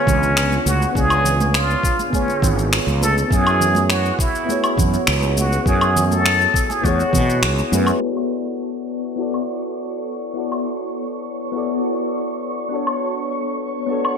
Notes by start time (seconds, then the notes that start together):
Already playing: D3 B3 C#4 D4 F4 G#4 C#5
0.07 C#2, kick, low conga, shaker
0.23 shaker
0.37 finger snap, shaker
0.52 muted conga, shaker
0.66 C#2 F#4, high conga, shaker
0.82 shaker
0.92 C#2 B3 D4 F4 G#4, kick
0.97 G#4 C#5, shaker
1.10 low woodblock, shaker
1.25 low conga, shaker
1.40 high conga, shaker
1.54 F4, finger snap, shaker
1.70 shaker
1.83 kick, shaker
1.99 muted conga, shaker
2.10 D3 B3 C#4 F4, kick, high conga
2.14 G#4 C#5, shaker
2.28 muted conga, shaker
2.42 G#1, kick, low conga, shaker
2.59 shaker
2.73 finger snap, shaker
2.87 C#2, muted conga, shaker
3.02 A4, high conga, shaker
3.18 shaker
3.28 F#2 B3 E4 F#4, kick
3.32 G#4 C#5, shaker
3.47 low woodblock, shaker
3.61 low conga, shaker
3.75 high conga, shaker
3.90 F#4, finger snap, shaker
4.05 shaker
4.19 E4, kick, shaker
4.35 shaker
4.45 B3 E4 F#4, high conga
4.50 G#4 C#5, shaker
4.64 low woodblock, shaker
4.78 F#2, kick, low conga, shaker
4.94 shaker
5.07 C#2, finger snap, shaker
5.22 muted conga, shaker
5.37 F#4, high conga, shaker
5.53 shaker
5.63 F#2 B3 E4 F#4 G#4, kick, shaker
5.68 C#5 G#5
5.81 low woodblock, shaker
5.96 low conga, shaker
6.11 A4, high conga, shaker
6.26 finger snap, shaker
6.41 shaker
6.54 kick, shaker
6.69 G#4, muted conga, shaker
6.81 E2 B3 E4 F#4, kick, high conga, shaker
6.86 G#4 C#5
6.99 muted conga, shaker
7.13 B2, kick, low conga, shaker
7.30 shaker
7.42 C#2, finger snap, shaker
7.58 muted conga, shaker
7.71 F#2 B3 E4 F#4 G#4 B4, high conga, shaker
7.87 low woodblock, shaker
7.98 B3 E4 F#4, crash
8.02 C#5 D5 C#6
8.17 low woodblock
9.16 B3 E4 F#4
9.20 A4 D5
9.34 low woodblock
10.34 B3 E4 F#4
10.38 A4 D5
10.52 low woodblock
11.52 B3 E4 F#4
11.56 A4 D5
12.69 B3 D4 F#4
12.74 A4 C#5
12.87 low woodblock
13.86 B3 D4 F#4
13.91 A4 C#5
14.05 low woodblock